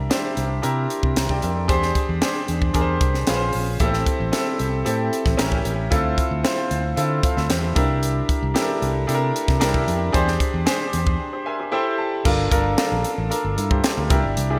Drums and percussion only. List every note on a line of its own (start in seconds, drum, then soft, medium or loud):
0.11 snare loud
0.11 closed hi-hat medium
0.37 closed hi-hat medium
0.63 closed hi-hat medium
0.90 closed hi-hat medium
1.03 kick medium
1.16 snare loud
1.16 closed hi-hat loud
1.29 kick medium
1.42 closed hi-hat medium
1.69 kick loud
1.69 closed hi-hat medium
1.82 snare soft
1.95 kick medium
1.95 closed hi-hat medium
2.22 snare loud
2.22 closed hi-hat medium
2.48 closed hi-hat medium
2.62 kick medium
2.74 kick medium
2.74 closed hi-hat medium
3.01 kick loud
3.01 closed hi-hat medium
3.14 snare soft
3.27 snare loud
3.27 closed hi-hat loud
3.53 open hi-hat medium
3.80 kick loud
3.80 closed hi-hat medium
3.93 snare soft
4.06 kick medium
4.06 closed hi-hat medium
4.33 snare loud
4.33 closed hi-hat medium
4.59 closed hi-hat medium
4.86 closed hi-hat medium
5.13 closed hi-hat medium
5.26 kick medium
5.26 snare soft
5.39 snare loud
5.39 closed hi-hat loud
5.52 kick medium
5.65 closed hi-hat medium
5.92 kick loud
5.92 closed hi-hat medium
6.18 kick medium
6.18 closed hi-hat medium
6.44 snare loud
6.44 closed hi-hat medium
6.71 closed hi-hat medium
6.97 closed hi-hat medium
7.23 kick loud
7.23 closed hi-hat medium
7.37 snare soft
7.50 snare loud
7.50 closed hi-hat loud
7.76 kick loud
7.76 closed hi-hat medium
8.03 closed hi-hat medium
8.29 kick medium
8.29 closed hi-hat medium
8.56 snare loud
8.56 closed hi-hat medium
8.82 closed hi-hat medium
9.09 closed hi-hat medium
9.36 closed hi-hat medium
9.48 kick medium
9.48 snare soft
9.61 snare loud
9.61 closed hi-hat loud
9.74 kick medium
9.88 closed hi-hat medium
10.14 kick loud
10.14 closed hi-hat medium
10.28 snare soft
10.40 kick medium
10.40 closed hi-hat medium
10.67 snare loud
10.67 closed hi-hat medium
10.93 closed hi-hat medium
11.07 kick medium
12.25 kick loud
12.25 crash loud
12.52 kick medium
12.52 closed hi-hat medium
12.78 snare loud
12.78 closed hi-hat medium
13.04 closed hi-hat medium
13.32 closed hi-hat medium
13.58 closed hi-hat medium
13.71 kick medium
13.84 snare loud
13.84 closed hi-hat loud
14.10 kick loud
14.10 closed hi-hat medium
14.37 closed hi-hat medium